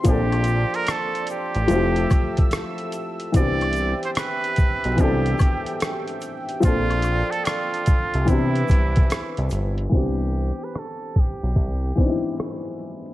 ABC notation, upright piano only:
X:1
M:4/4
L:1/8
Q:"Swing 16ths" 1/4=73
K:C
V:1 name="Upright piano"
[F,_B,CDA]3 z [F,A,CEG]3 z | [E,B,CDG]3 z [E,B,CDA]3 z | [F,_B,CDA]3 z [E,=B,CDG]3 z | [E,B,CDG]3 z2 [E,B,CD_E=E]2 z |]